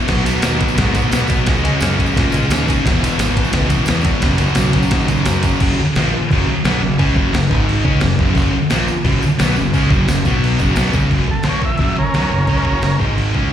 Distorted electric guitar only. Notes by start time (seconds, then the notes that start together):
0.07 B2 F#3 B3
0.24 B2 F#3 B3
0.41 B2 F#3 B3
0.58 B2 F#3 B3
0.75 B2 F#3 B3
0.93 B2 F#3 B3
1.10 B2 F#3 B3
1.27 B2 F#3 B3
1.46 C#3 G#3 C#4
1.63 C#3 G#3 C#4
1.79 C#3 G#3 C#4
1.97 C#3 G#3 C#4
2.15 C#3 G#3 C#4
2.31 C#3 G#3 C#4
2.50 C#3 G#3 C#4
2.67 C#3 G#3 C#4
2.84 E2 B2 E3
3.01 E2 B2 E3
3.17 E2 B2 E3
3.35 E2 B2 E3
3.52 E2 B2 E3
3.70 E2 B2 E3
3.87 E2 B2 E3
4.04 E2 B2 E3
4.22 F#2 C#3 F#3
4.39 F#2 C#3 F#3
4.55 F#2 C#3 F#3
4.74 F#2 C#3 F#3
4.92 F#2 C#3 F#3
5.09 F#2 C#3 F#3
5.24 F#2 C#3 F#3
5.44 F#2 C#3 F#3
5.61 F#2 C#3 F#3
5.80 muted distorted electric guitar stroke
5.96 A#2 F3 A#3
6.13 muted distorted electric guitar stroke
6.32 F#2 C#3 F#3
6.49 muted distorted electric guitar stroke
6.64 B2 F#3 B3
6.81 F#2 C#3
6.98 C#3 G#3 C#4
7.15 F#2 C#3 F#3
7.33 F#2 C#3
7.50 G#2 D#3 G#3
7.83 C#3 G#3 C#4
8.03 F#2 C#3
8.20 F#2 C#3 F#3
8.35 F#2 C#3 F#3
8.54 muted distorted electric guitar stroke
8.69 A#2 F3 A#3
8.87 muted distorted electric guitar stroke
9.04 F#2 C#3 F#3
9.21 muted distorted electric guitar stroke
9.38 B2 F#3 B3
9.56 F#2 C#3
9.73 C#3 G#3 C#4
9.90 F#2 C#3 F#3
10.08 F#2 C#3
10.25 B2 F#3 B3
10.59 F#2 C#3 F#3
10.75 B2 F#3 B3
10.94 C#3 G#3 C#4
11.11 F#2 C#3 F#3
11.28 muted distorted electric guitar stroke
11.44 A#2 F3 A#3
11.63 muted distorted electric guitar stroke
11.78 F#2 C#3 F#3
11.96 muted distorted electric guitar stroke
12.14 B2 F#3 B3
12.32 F#2 C#3
12.48 C#3 G#3 C#4
12.65 F#2 C#3 F#3
12.82 F#2 C#3
12.98 G#2 D#3 G#3
13.34 C#3 G#3 C#4